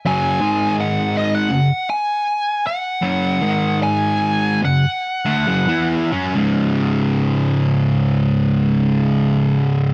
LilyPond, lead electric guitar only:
\new Staff \with { instrumentName = "Lead electric guitar" } { \time 4/4 \key cis \minor \tempo 4 = 72 gis''4 fis''8 dis''16 fis''8. gis''4 fis''8~ | fis''4 gis''4 fis''4. r8 | r1 | }